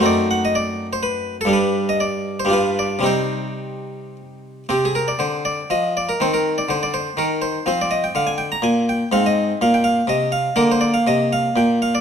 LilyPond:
<<
  \new Staff \with { instrumentName = "Harpsichord" } { \time 3/4 \key c \minor \tempo 4 = 122 << { d''8 fis''16 dis''16 d''8. c''16 b'8. a'16 | b'8. ees''16 d''8. c''16 b'8 d''8 | c''2 r4 | g'16 aes'16 bes'16 d''16 c''8 d''8 ees''8 d''16 bes'16 |
c''16 bes'8 d''16 c''16 d''16 c''8 bes'8 c''8 | c''16 d''16 ees''16 g''16 f''16 aes''16 g''16 bes''16 aes''8 g''8 | f''16 ees''8. f''16 g''16 f''8 ees''8 f''8 | \key bes \mixolydian bes'16 c''16 d''16 f''16 ees''8 f''8 g''8 f''16 d''16 | } \\ { <fis, a c' dis'>2. | <g, g d'>2 <g, g d' f'>4 | <c g c' ees'>2. | c'2. |
c'2. | c'2. | c'2. | bes2. | } >> }
  \new Staff \with { instrumentName = "Harpsichord" } { \clef bass \time 3/4 \key c \minor r2. | r2. | r2. | c4 d4 f4 |
ees4 d4 ees4 | f4 d4 bes,4 | aes,4 bes,4 c4 | \key bes \mixolydian d4 c4 bes,4 | }
>>